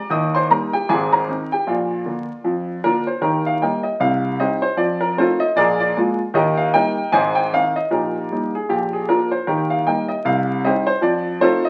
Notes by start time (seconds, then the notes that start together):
Already playing: D6
0.10 D#2 D#3 D#5 D#6
0.35 C5 C6
0.50 G3 A#3 D#4 A#4 A#5
0.73 G4 G5
0.89 G#1 G#2 G#4 G#5
1.13 A#4 A#5
1.28 D#3 C4 D#4
1.52 G4 G5
1.67 A#1 A#2 F4 D5 F5
2.06 D3 A#3
2.44 F2 F3
2.84 D3 A#3 D4 F4 A#4
3.07 C5
3.21 D#2 D#3 D#4 G4 A#4
3.46 F5
3.61 G3 A#3 A#4 D#5 G5
3.83 D#5
4.00 C2 C3 F5
4.39 G3 C4 D#4 G4 C5 D#5
4.62 C5
4.77 F2 F3 D5
5.01 A#4
5.17 A3 C4 D#4 F4 A4 C5
5.40 D#5
5.56 A#1 A#2 G#4 A#4 D5
5.80 D5
5.97 G#3 A#3 F4
6.34 D#2 D#3 G4 A#4 D#5
6.57 F5
6.74 G3 A#3 D#4 A#4 D#5 G5
7.12 G#1 G#2 C5 D#5 G#5
7.35 G5
7.53 D#3 C4 D#4 F5
7.76 D#5
7.91 A#1 A#2 D#4 G4 A#4
8.31 G3 A#3 D#4
8.55 G#4
8.69 A#1 A#2 G4
8.93 G#4
9.08 F3 A#3 D4 F4 A#4
9.31 C5
9.47 D#2 D#3 D#4 G4 A#4
9.70 F5
9.87 G3 A#3 D#4 A#4 D#5 G5
10.09 D#5
10.25 C2 C3 F5
10.64 G3 C4 D#4 G4 C5 D#5
10.87 C5
11.01 F2 F3 D5
11.41 A3 C4 D#4 F4 A4 C5
11.65 D#5